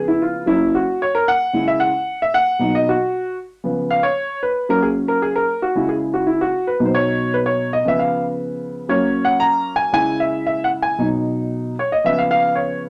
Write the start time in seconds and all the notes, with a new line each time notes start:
Already playing: C#3 F3 B3
0.08 E4
0.22 F4
0.46 F#3 A#3 C#4 E4
0.75 F#4
1.02 C#5
1.15 A#4
1.28 F#5
1.53 C#3 G#3 E4
1.68 E5
1.80 F#5
2.22 E5
2.34 F#5
2.59 B2 F#3 D#4
2.75 D#5
2.89 F#4
3.64 C#3 F3 B3
3.91 F5
4.03 C#5
4.43 B4
4.69 F#3 A#3 C#4 A#4
4.82 G#4
5.08 A#4
5.22 G#4
5.36 A#4
5.62 F#4
5.75 C#3 G#3 E4
5.89 G#4
6.14 F#4
6.27 E4
6.41 F#4
6.67 B4
6.80 B2 F#3 D#4
6.86 C5
6.95 C#5
7.34 B4
7.46 C#5
7.73 D#5
7.85 C#3 F3 B3 E5
7.99 F5
8.89 F#3 A#3 C#4 C#5
9.25 F#5
9.40 A#5
9.76 G#5
9.92 C#3 G#3 E4 G#5
10.20 E5
10.47 E5
10.64 F#5
10.82 G#5
10.98 B2 F#3 D#4
11.79 C#5
11.92 D#5
12.04 C#3 F3 B3 E5
12.18 F5
12.31 F5
12.55 C#5